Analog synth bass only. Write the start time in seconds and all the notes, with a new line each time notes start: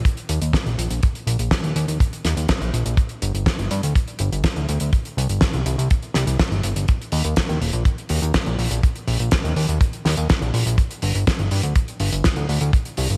0.29 D#2
0.42 D#2
0.66 A#1
0.78 A#1
0.90 A#1
1.27 A#1
1.39 A#1
1.63 D#2
1.76 D#2
1.88 D#2
2.24 D#2
2.37 D#2
2.61 A#1
2.73 A#1
2.86 A#1
3.22 G1
3.34 G1
3.59 G1
3.71 G2
3.83 D2
4.20 G1
4.32 G1
4.56 D2
4.69 D2
4.81 D2
5.17 C2
5.29 G1
5.54 C2
5.66 C2
5.78 C2
6.15 C2
6.27 C2
6.51 G1
6.64 G1
6.76 G1
7.12 D#2
7.25 D#2
7.49 D#2
7.61 D#1
7.73 A#1
8.10 D#2
8.22 D#2
8.46 A#1
8.59 A#1
8.71 A#1
9.07 A#1
9.20 A#1
9.44 D#2
9.56 D#2
9.69 D#2
10.05 D#2
10.17 D#2
10.42 A#1
10.54 A#1
10.66 A#1
11.03 G1
11.15 G1
11.39 G1
11.51 G2
11.63 D2
12.00 G1
12.12 G1
12.37 D2
12.49 D2
12.61 D2
12.98 C2
13.10 G1